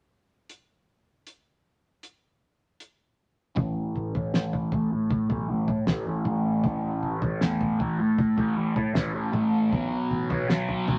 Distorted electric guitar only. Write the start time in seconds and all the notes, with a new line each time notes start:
3.56 A2 E3 A3
4.14 E3 A3
4.33 A2 E3 A3
4.72 A2 E3 A3
4.91 muted distorted electric guitar stroke
5.29 E3 A3
5.48 A2 E3 A3
5.68 muted distorted electric guitar stroke
5.87 A2 E3 A3
6.07 E3 A3
6.25 A2 E3 A3
6.65 A2 E3 A3
7.22 E3 A3
7.42 A2 E3 A3
7.79 A2 E3 A3
7.99 muted distorted electric guitar stroke
8.37 E3 A3
8.56 A2 E3 A3
8.76 muted distorted electric guitar stroke
8.94 A2 E3 A3
9.14 E3 A3
9.33 A2 E3 A3
9.72 B2 F#3 B3
10.30 F#3 B3
10.49 B2 F#3 B3
10.87 B2 F#3 B3